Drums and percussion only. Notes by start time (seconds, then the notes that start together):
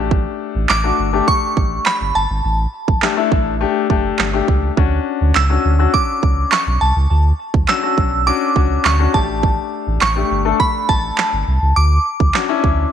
0.11 kick
0.69 snare, clap
1.28 kick
1.57 kick
1.86 snare, clap
2.88 kick
3.02 snare, clap
3.32 kick
3.90 kick
4.19 snare, clap
4.48 kick
4.77 kick
5.35 snare, clap
5.94 kick
6.23 kick
6.52 snare, clap
7.54 kick
7.68 snare, clap
7.98 kick
8.56 kick
8.85 snare, clap
9.14 kick
9.43 kick
10.01 snare, clap
10.60 kick
10.89 kick
11.18 snare, clap
12.20 kick
12.34 snare, clap
12.64 kick